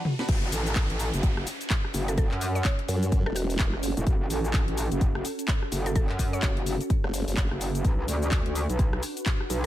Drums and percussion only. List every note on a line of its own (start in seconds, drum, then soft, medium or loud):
0.05 mid tom medium
0.19 snare medium
0.29 kick loud
0.29 closed hi-hat medium
0.29 crash loud
0.29 shaker soft
0.52 open hi-hat loud
0.52 shaker medium
0.67 shaker soft
0.76 kick loud
0.76 clap loud
0.76 closed hi-hat medium
0.76 shaker soft
0.90 closed hi-hat medium
0.99 open hi-hat loud
0.99 shaker medium
1.14 closed hi-hat medium
1.14 shaker soft
1.23 kick loud
1.23 closed hi-hat medium
1.23 shaker soft
1.37 cross-stick medium
1.47 open hi-hat loud
1.47 shaker medium
1.61 closed hi-hat medium
1.61 shaker soft
1.70 kick loud
1.70 clap loud
1.70 closed hi-hat medium
1.70 shaker soft
1.85 cross-stick medium
1.94 open hi-hat loud
1.94 shaker medium
2.08 closed hi-hat medium
2.08 shaker soft
2.18 kick loud
2.18 closed hi-hat medium
2.18 shaker soft
2.31 clap soft
2.41 open hi-hat loud
2.41 shaker medium
2.56 shaker soft
2.65 kick loud
2.65 clap loud
2.65 closed hi-hat medium
2.65 shaker soft
2.79 closed hi-hat medium
2.88 open hi-hat loud
2.88 shaker medium
3.03 closed hi-hat medium
3.03 shaker soft
3.12 kick loud
3.12 closed hi-hat medium
3.12 shaker soft
3.26 cross-stick medium
3.36 open hi-hat loud
3.36 shaker medium
3.50 open hi-hat medium
3.50 shaker soft
3.59 kick loud
3.59 clap loud
3.59 closed hi-hat medium
3.59 shaker soft
3.73 cross-stick medium
3.83 open hi-hat loud
3.83 shaker medium
3.97 closed hi-hat medium
3.97 shaker soft
4.07 kick loud
4.07 closed hi-hat medium
4.07 shaker soft
4.30 open hi-hat loud
4.30 shaker medium
4.45 shaker soft
4.54 kick loud
4.54 clap loud
4.54 closed hi-hat medium
4.54 shaker soft
4.68 closed hi-hat medium
4.78 open hi-hat loud
4.78 shaker medium
4.92 closed hi-hat soft
4.92 shaker soft
5.01 kick loud
5.01 closed hi-hat medium
5.01 shaker soft
5.15 cross-stick medium
5.25 open hi-hat loud
5.25 shaker medium
5.39 closed hi-hat medium
5.39 shaker soft
5.48 kick loud
5.48 clap loud
5.48 closed hi-hat medium
5.48 shaker soft
5.62 cross-stick medium
5.72 open hi-hat loud
5.72 shaker medium
5.86 closed hi-hat medium
5.86 shaker soft
5.96 kick loud
5.96 closed hi-hat medium
5.96 shaker soft
6.09 clap soft
6.19 kick medium
6.19 open hi-hat loud
6.19 shaker medium
6.33 shaker soft
6.42 kick loud
6.42 clap loud
6.42 closed hi-hat medium
6.42 shaker soft
6.57 closed hi-hat soft
6.66 open hi-hat loud
6.66 shaker medium
6.81 closed hi-hat soft
6.81 shaker soft
6.90 kick loud
6.90 closed hi-hat medium
6.90 shaker soft
7.04 cross-stick medium
7.14 open hi-hat loud
7.14 shaker medium
7.28 open hi-hat medium
7.28 shaker soft
7.37 kick loud
7.37 clap loud
7.37 closed hi-hat medium
7.37 shaker soft
7.51 cross-stick medium
7.61 open hi-hat loud
7.61 shaker medium
7.75 closed hi-hat medium
7.75 shaker soft
7.85 kick loud
7.85 closed hi-hat medium
7.85 shaker soft
8.08 open hi-hat loud
8.08 shaker medium
8.22 shaker soft
8.31 kick loud
8.31 clap loud
8.31 closed hi-hat medium
8.31 shaker soft
8.46 closed hi-hat medium
8.55 open hi-hat loud
8.55 shaker medium
8.70 closed hi-hat soft
8.70 shaker soft
8.79 kick loud
8.79 closed hi-hat medium
8.79 shaker soft
8.93 cross-stick medium
9.03 open hi-hat loud
9.03 shaker medium
9.17 closed hi-hat medium
9.17 shaker soft
9.26 kick loud
9.26 clap loud
9.26 closed hi-hat medium
9.26 shaker soft
9.40 cross-stick medium
9.50 open hi-hat loud
9.50 shaker medium